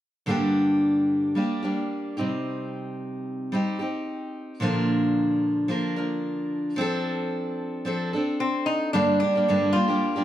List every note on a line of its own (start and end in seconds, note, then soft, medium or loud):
0.26 1.35 G2 medium
0.26 1.36 D3 medium
0.26 1.35 G3 medium
0.26 1.35 A#3 medium
0.26 1.36 D4 medium
0.30 1.38 G4 medium
1.35 1.63 G3 medium
1.35 1.63 A#3 medium
1.35 1.63 D4 medium
1.35 1.61 G4 soft
1.63 2.19 G3 soft
1.63 2.18 A#3 soft
1.63 2.17 D4 soft
1.63 2.16 G4 soft
2.17 3.54 C3 soft
2.17 3.51 G3 soft
2.17 3.52 C4 soft
2.17 3.53 D#4 medium
2.17 3.53 G4 soft
3.52 3.80 G3 medium
3.52 3.80 C4 medium
3.52 3.80 D#4 medium
3.52 3.78 G4 medium
3.79 4.62 C4 soft
3.79 4.62 D#4 soft
3.79 4.61 G4 soft
4.60 5.69 A#2 medium
4.60 6.81 D3 medium
4.60 5.68 F3 medium
4.60 5.68 A#3 medium
4.60 5.69 D4 medium
4.60 5.70 A#4 medium
5.68 5.96 F3 medium
5.68 5.96 A#3 medium
5.68 5.96 D4 medium
5.68 5.95 A#4 medium
5.96 6.76 F3 soft
5.96 6.77 A#3 soft
5.96 6.79 D4 soft
5.96 6.78 A#4 soft
6.76 7.84 F3 medium
6.76 7.85 C4 medium
6.76 7.87 D4 medium
6.81 7.86 A4 medium
7.85 8.13 F3 medium
7.85 8.13 C4 medium
7.85 8.13 D4 medium
7.85 8.12 A4 medium
8.13 8.95 C4 soft
8.13 8.94 D4 soft
8.13 8.94 A4 soft
8.40 8.68 C4 medium
8.66 8.92 D#4 medium
8.93 9.21 G2 medium
8.93 9.22 D3 medium
8.93 9.20 G3 medium
8.93 9.21 A#3 medium
8.93 9.19 D4 medium
8.93 9.22 D4 medium
8.93 9.22 G4 medium
9.20 9.35 G3 soft
9.20 9.35 A#3 medium
9.20 9.71 D4 medium
9.20 9.34 D4 soft
9.24 9.34 G4 medium
9.35 9.48 G3 soft
9.35 9.48 A#3 soft
9.35 9.49 D4 soft
9.35 9.49 G4 soft
9.48 9.75 G2 medium
9.48 9.75 D3 medium
9.48 9.74 G3 medium
9.48 9.74 A#3 medium
9.48 9.75 D4 medium
9.48 9.76 G4 medium
9.73 9.89 G3 soft
9.73 9.89 A#3 medium
9.73 9.88 D4 medium
9.73 10.24 F4 medium
9.77 9.86 G4 medium
9.88 10.17 G3 soft
9.88 10.17 A#3 soft
9.88 10.16 D4 soft
9.88 10.15 G4 soft
10.16 10.24 G3 soft
10.16 10.24 A#3 soft
10.16 10.24 D4 soft
10.16 10.24 G4 soft